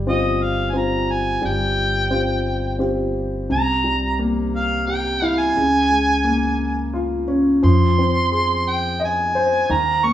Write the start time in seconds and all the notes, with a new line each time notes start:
Already playing: G1 G3
0.07 C4 F4 G4 D#5
0.43 F5
0.70 C4 F4 G#5
0.78 A#5
1.11 G#5
1.42 G1 G3 G5
2.10 C4 F4 G4
2.79 C4 F4 G4
3.50 C2 C3 A#5
3.84 G3
4.19 A#3
4.56 F5
4.87 G4 G5
5.22 E4 F5
5.39 G#5
5.56 C#2 C#3
5.90 G#3
6.24 A#3
6.94 F4
7.28 C#4
7.63 F2 F3 C6
7.98 C4
8.32 G#4
8.69 G5
9.00 D#5
9.04 G#5
9.35 C5
9.69 D#2 D#3 A#5
10.04 A#3 C#6